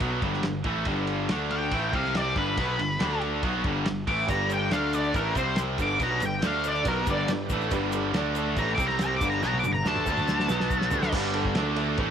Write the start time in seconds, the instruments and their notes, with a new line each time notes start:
0.00 picked electric bass B1, distorted electric guitar B2 F#3 B3, kick, ride
0.22 picked electric bass G1, distorted electric guitar G2 D3 G3, kick, ride
0.33 snare
0.42 picked electric bass G1, distorted electric guitar G2 D3, snare, ride
0.64 picked electric bass A1, distorted electric guitar A2 E3 A3, kick, ride
0.85 picked electric bass G1, distorted electric guitar G2 D3 G3, kick, ride
1.07 ride
1.28 picked electric bass D2, distorted electric guitar D3 A3 D4, snare, ride
1.51 lead electric guitar G5, ride
1.71 picked electric bass A1, distorted electric guitar A2 E3 A3, kick, ride
1.93 picked electric bass C2, distorted electric guitar C3 G3 C4, lead electric guitar F5, kick, ride
2.05 snare
2.15 lead electric guitar D5, snare, ride
2.36 picked electric bass G1, distorted electric guitar G2 D3 G3, lead electric guitar B4, kick, ride
2.57 picked electric bass B1, distorted electric guitar B2 F#3 B3, kick, ride
2.79 picked electric bass G1, distorted electric guitar G2 D3, ride
3.00 picked electric bass D2, distorted electric guitar D3 A3 D4, snare, ride
3.21 ride
3.43 picked electric bass B1, distorted electric guitar B2 F#3 B3, kick, ride
3.64 picked electric bass G1, distorted electric guitar G2 D3 G3, kick, ride
3.85 picked electric bass G1, distorted electric guitar G2 D3, snare, ride
4.07 picked electric bass A1, distorted electric guitar A2 E3 A3, lead electric guitar D6, kick, ride
4.27 picked electric bass G1, distorted electric guitar G2 D3 G3, upright piano G4 B4 D5, tonewheel organ G4 B4 D5, lead electric guitar A#5, kick, ride, shaker
4.49 upright piano G4 B4 D5, lead electric guitar G5, ride, shaker
4.71 picked electric bass D2, distorted electric guitar D3 A3 D4, upright piano D4 A4 D5, tonewheel organ D4 A4 D5, lead electric guitar F5, snare, ride, shaker
4.93 upright piano D4 A4 D5, lead electric guitar D5, ride, shaker
5.04 shaker
5.14 picked electric bass A1, distorted electric guitar A2 E3 A3, upright piano D4 G4 B4, lead electric guitar A#4, kick, ride, shaker
5.33 picked electric bass C2, distorted electric guitar C3 G3, tonewheel organ C4 G4 C5, upright piano C4, kick, ride, shaker
5.37 distorted electric guitar C4, upright piano G4 C5, lead electric guitar C5
5.56 snare, ride, shaker
5.78 picked electric bass G1, distorted electric guitar G2 D3 G3, tonewheel organ D4 G4 B4, upright piano D4 G4 B4, kick, ride, shaker
5.82 lead electric guitar D6
5.90 shaker
6.00 picked electric bass B1, distorted electric guitar B2 F#3 B3, lead electric guitar A#5, kick, ride, shaker
6.20 picked electric bass G1, distorted electric guitar G2 D3, upright piano D4 G4 B4, ride, shaker
6.25 lead electric guitar G5
6.42 picked electric bass D2, distorted electric guitar D3 A3 D4, upright piano D4 A4 D5, tonewheel organ D4 A4 D5, snare, ride, shaker
6.47 lead electric guitar F5
6.64 upright piano D4 A4 D5, lead electric guitar D5, ride, shaker
6.75 shaker
6.83 picked electric bass B1, distorted electric guitar B2 F#3 B3, tonewheel organ D4 G4 B4, upright piano D4 G4 B4, kick, ride, shaker
6.88 lead electric guitar A#4
7.07 picked electric bass G1, distorted electric guitar G2 D3 G3, upright piano D4 G4 B4, lead electric guitar D5, kick, ride, shaker
7.28 picked electric bass G1, distorted electric guitar G2 D3, upright piano D4 G4 B4, snare, ride, shaker
7.49 picked electric bass A1, distorted electric guitar A2 E3 A3, upright piano D4 G4 B4, kick, ride, shaker
7.61 shaker
7.71 picked electric bass G1, distorted electric guitar G2 D3 G3, upright piano D4 G4 B4, kick, ride, shaker
7.92 upright piano D4 G4 A4, ride, shaker
8.13 picked electric bass D2, distorted electric guitar D3 A3 D4, tonewheel organ D4 A4 D5, upright piano D4 A4 D5, snare, ride, shaker
8.35 upright piano D4 A4 D5, ride, shaker
8.57 picked electric bass A1, distorted electric guitar A2 E3 A3, upright piano D4 G4 B4, lead electric guitar A#5, kick, ride, shaker
8.75 picked electric bass C2, distorted electric guitar C3, lead electric guitar D6, kick, ride
8.79 distorted electric guitar G3 C4, upright piano C4 G4 C5, tonewheel organ C4 G4 C5, shaker
8.88 lead electric guitar A#5, snare
8.99 lead electric guitar A#5, snare, ride, shaker
9.16 upright piano D4, tonewheel organ G4, lead electric guitar D6
9.20 picked electric bass G1, distorted electric guitar G2 D3 G3, tonewheel organ D4 B4, upright piano G4 B4, kick, ride, shaker
9.30 lead electric guitar A#5, shaker
9.42 picked electric bass B1, distorted electric guitar B2 F#3 B3, lead electric guitar A#5, snare, shaker
9.54 high tom
9.59 lead electric guitar D6
9.63 picked electric bass G1, distorted electric guitar G2 D3, upright piano D4 G4 B4, high tom, shaker
9.73 lead electric guitar A#5, high tom, shaker
9.85 picked electric bass D2, distorted electric guitar D3 A3 D4, upright piano D4 G4 B4, lead electric guitar A5, snare, shaker
9.96 mid tom
10.05 picked electric bass D2, distorted electric guitar D3 A3, upright piano D4 A4 D5, tonewheel organ D4 A4 D5, kick, shaker
10.10 distorted electric guitar D4
10.17 mid tom, shaker
10.28 snare, shaker
10.40 snare
10.47 picked electric bass B1, distorted electric guitar B2 F#3 B3, upright piano B3 F#4 B4, tonewheel organ B3 F#4 B4, snare, shaker
10.60 snare, shaker
10.70 kick, shaker
10.81 snare
10.91 picked electric bass D2, distorted electric guitar D3 A3 D4, upright piano D4 G4 B4, floor tom, shaker
11.02 snare, shaker
11.11 picked electric bass G1, distorted electric guitar G2 D3 G3, upright piano B3 D4 G4 B4, tonewheel organ D4 G4 B4, kick, crash
11.34 upright piano B3 D4 G4 A4, ride
11.45 kick
11.54 picked electric bass D2, distorted electric guitar D3 A3 D4, upright piano A3 D4 A4 D5, tonewheel organ D4 A4 D5, snare, ride
11.76 upright piano A3 D4 A4 E5, ride
11.97 picked electric bass A1, distorted electric guitar A2 E3 A3, upright piano B3 D4 G4 B4, kick, ride